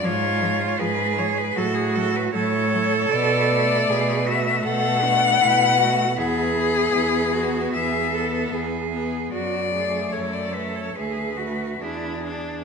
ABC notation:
X:1
M:4/4
L:1/16
Q:1/4=77
K:Emix
V:1 name="Cello"
c4 B2 c B A G A B c4 | d6 e2 f8 | G8 e4 z4 | d4 c d B c B4 G4 |]
V:2 name="Cello"
^E4 G4 F4 A4- | A4 G2 F2 A2 D2 E2 F2 | E4 E2 F2 G2 A2 G4 | F2 G2 A4 G2 F2 E2 D2 |]
V:3 name="Cello"
^E,2 E,2 E,2 E,2 F,2 F,2 F,2 F,2 | z2 A,4 A,4 A,4 A,2 | B,2 B,4 B,4 B,4 B,2 | z2 A,4 A,2 A,2 A,2 D2 D2 |]
V:4 name="Cello" clef=bass
G,,4 G,,4 A,,4 A,,4 | B,,4 B,,4 B,,4 B,,4 | E,,4 E,,4 E,,4 E,,4 | F,,4 F,,4 D,,4 E,,4 |]